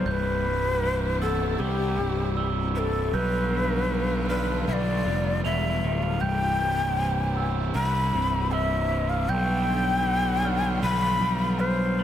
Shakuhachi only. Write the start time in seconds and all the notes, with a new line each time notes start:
0.08 B4 C5
1.22 A4
1.59 G4
2.75 A4 B4
3.15 B4
4.29 B4
4.68 E5
4.73 D5
5.45 E5
6.03 F5
6.21 G5
7.75 B5
8.52 E5
9.10 F5
9.29 G5
10.83 B5
11.59 C5